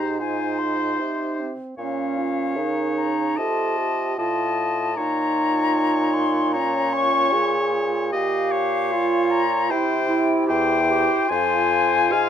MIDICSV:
0, 0, Header, 1, 6, 480
1, 0, Start_track
1, 0, Tempo, 796813
1, 1071, Time_signature, 4, 2, 24, 8
1, 2518, Tempo, 788436
1, 6358, Tempo, 808625
1, 7429, End_track
2, 0, Start_track
2, 0, Title_t, "Flute"
2, 0, Program_c, 0, 73
2, 0, Note_on_c, 0, 82, 75
2, 116, Note_off_c, 0, 82, 0
2, 123, Note_on_c, 0, 80, 85
2, 353, Note_on_c, 0, 84, 87
2, 362, Note_off_c, 0, 80, 0
2, 832, Note_off_c, 0, 84, 0
2, 1072, Note_on_c, 0, 77, 94
2, 1763, Note_off_c, 0, 77, 0
2, 1786, Note_on_c, 0, 82, 82
2, 2032, Note_on_c, 0, 81, 96
2, 2041, Note_off_c, 0, 82, 0
2, 2509, Note_off_c, 0, 81, 0
2, 2512, Note_on_c, 0, 81, 94
2, 2987, Note_on_c, 0, 82, 104
2, 2996, Note_off_c, 0, 81, 0
2, 3710, Note_on_c, 0, 84, 101
2, 3719, Note_off_c, 0, 82, 0
2, 3948, Note_on_c, 0, 82, 102
2, 3957, Note_off_c, 0, 84, 0
2, 4194, Note_on_c, 0, 85, 111
2, 4203, Note_off_c, 0, 82, 0
2, 4681, Note_off_c, 0, 85, 0
2, 4920, Note_on_c, 0, 77, 122
2, 5639, Note_on_c, 0, 82, 104
2, 5648, Note_off_c, 0, 77, 0
2, 5886, Note_on_c, 0, 79, 113
2, 5895, Note_off_c, 0, 82, 0
2, 6351, Note_off_c, 0, 79, 0
2, 6355, Note_on_c, 0, 79, 127
2, 6836, Note_on_c, 0, 80, 127
2, 6845, Note_off_c, 0, 79, 0
2, 7429, Note_off_c, 0, 80, 0
2, 7429, End_track
3, 0, Start_track
3, 0, Title_t, "Oboe"
3, 0, Program_c, 1, 68
3, 0, Note_on_c, 1, 72, 66
3, 115, Note_off_c, 1, 72, 0
3, 119, Note_on_c, 1, 72, 68
3, 900, Note_off_c, 1, 72, 0
3, 1073, Note_on_c, 1, 73, 64
3, 2028, Note_on_c, 1, 75, 68
3, 2037, Note_off_c, 1, 73, 0
3, 2517, Note_off_c, 1, 75, 0
3, 2522, Note_on_c, 1, 75, 68
3, 3002, Note_on_c, 1, 73, 76
3, 3011, Note_off_c, 1, 75, 0
3, 3952, Note_off_c, 1, 73, 0
3, 3955, Note_on_c, 1, 73, 86
3, 4906, Note_off_c, 1, 73, 0
3, 4919, Note_on_c, 1, 75, 84
3, 5158, Note_on_c, 1, 73, 83
3, 5167, Note_off_c, 1, 75, 0
3, 5879, Note_on_c, 1, 72, 87
3, 5889, Note_off_c, 1, 73, 0
3, 6258, Note_off_c, 1, 72, 0
3, 6361, Note_on_c, 1, 72, 84
3, 6834, Note_off_c, 1, 72, 0
3, 6851, Note_on_c, 1, 72, 87
3, 7326, Note_on_c, 1, 77, 93
3, 7335, Note_off_c, 1, 72, 0
3, 7429, Note_off_c, 1, 77, 0
3, 7429, End_track
4, 0, Start_track
4, 0, Title_t, "Clarinet"
4, 0, Program_c, 2, 71
4, 0, Note_on_c, 2, 63, 55
4, 97, Note_off_c, 2, 63, 0
4, 120, Note_on_c, 2, 63, 57
4, 900, Note_off_c, 2, 63, 0
4, 1079, Note_on_c, 2, 61, 58
4, 1547, Note_on_c, 2, 63, 63
4, 1556, Note_off_c, 2, 61, 0
4, 2036, Note_on_c, 2, 65, 65
4, 2045, Note_off_c, 2, 63, 0
4, 2517, Note_off_c, 2, 65, 0
4, 2520, Note_on_c, 2, 65, 65
4, 2987, Note_off_c, 2, 65, 0
4, 3002, Note_on_c, 2, 65, 69
4, 3936, Note_off_c, 2, 65, 0
4, 3955, Note_on_c, 2, 65, 72
4, 4906, Note_off_c, 2, 65, 0
4, 4916, Note_on_c, 2, 67, 75
4, 5407, Note_on_c, 2, 65, 93
4, 5417, Note_off_c, 2, 67, 0
4, 5877, Note_on_c, 2, 64, 79
4, 5886, Note_off_c, 2, 65, 0
4, 6110, Note_off_c, 2, 64, 0
4, 6114, Note_on_c, 2, 64, 80
4, 6350, Note_on_c, 2, 67, 89
4, 6360, Note_off_c, 2, 64, 0
4, 6530, Note_off_c, 2, 67, 0
4, 6603, Note_on_c, 2, 67, 91
4, 6834, Note_on_c, 2, 65, 79
4, 6843, Note_off_c, 2, 67, 0
4, 7310, Note_off_c, 2, 65, 0
4, 7314, Note_on_c, 2, 65, 99
4, 7429, Note_off_c, 2, 65, 0
4, 7429, End_track
5, 0, Start_track
5, 0, Title_t, "French horn"
5, 0, Program_c, 3, 60
5, 0, Note_on_c, 3, 67, 65
5, 119, Note_on_c, 3, 65, 53
5, 128, Note_off_c, 3, 67, 0
5, 606, Note_on_c, 3, 63, 56
5, 615, Note_off_c, 3, 65, 0
5, 843, Note_on_c, 3, 60, 55
5, 853, Note_off_c, 3, 63, 0
5, 1069, Note_off_c, 3, 60, 0
5, 1073, Note_on_c, 3, 61, 59
5, 1314, Note_on_c, 3, 65, 66
5, 1323, Note_off_c, 3, 61, 0
5, 1544, Note_on_c, 3, 70, 65
5, 1553, Note_off_c, 3, 65, 0
5, 1868, Note_off_c, 3, 70, 0
5, 2029, Note_on_c, 3, 69, 75
5, 2272, Note_on_c, 3, 67, 67
5, 2281, Note_off_c, 3, 69, 0
5, 2513, Note_on_c, 3, 65, 74
5, 2522, Note_off_c, 3, 67, 0
5, 2988, Note_off_c, 3, 65, 0
5, 2992, Note_on_c, 3, 63, 76
5, 3961, Note_on_c, 3, 61, 83
5, 3970, Note_off_c, 3, 63, 0
5, 4439, Note_on_c, 3, 68, 99
5, 4448, Note_off_c, 3, 61, 0
5, 4920, Note_on_c, 3, 67, 75
5, 4930, Note_off_c, 3, 68, 0
5, 5300, Note_off_c, 3, 67, 0
5, 5403, Note_on_c, 3, 65, 87
5, 5721, Note_off_c, 3, 65, 0
5, 5883, Note_on_c, 3, 64, 99
5, 6818, Note_off_c, 3, 64, 0
5, 6840, Note_on_c, 3, 65, 86
5, 7332, Note_on_c, 3, 68, 97
5, 7341, Note_off_c, 3, 65, 0
5, 7429, Note_off_c, 3, 68, 0
5, 7429, End_track
6, 0, Start_track
6, 0, Title_t, "Bassoon"
6, 0, Program_c, 4, 70
6, 0, Note_on_c, 4, 44, 54
6, 599, Note_on_c, 4, 48, 58
6, 608, Note_off_c, 4, 44, 0
6, 915, Note_off_c, 4, 48, 0
6, 1072, Note_on_c, 4, 46, 60
6, 1544, Note_on_c, 4, 49, 59
6, 1553, Note_off_c, 4, 46, 0
6, 2030, Note_off_c, 4, 49, 0
6, 2036, Note_on_c, 4, 48, 69
6, 2511, Note_off_c, 4, 48, 0
6, 2517, Note_on_c, 4, 45, 61
6, 2999, Note_on_c, 4, 46, 73
6, 3009, Note_off_c, 4, 45, 0
6, 4924, Note_off_c, 4, 46, 0
6, 4928, Note_on_c, 4, 46, 75
6, 5884, Note_on_c, 4, 48, 83
6, 5894, Note_off_c, 4, 46, 0
6, 6367, Note_on_c, 4, 40, 83
6, 6375, Note_off_c, 4, 48, 0
6, 6742, Note_off_c, 4, 40, 0
6, 6843, Note_on_c, 4, 41, 89
6, 7324, Note_on_c, 4, 44, 86
6, 7332, Note_off_c, 4, 41, 0
6, 7429, Note_off_c, 4, 44, 0
6, 7429, End_track
0, 0, End_of_file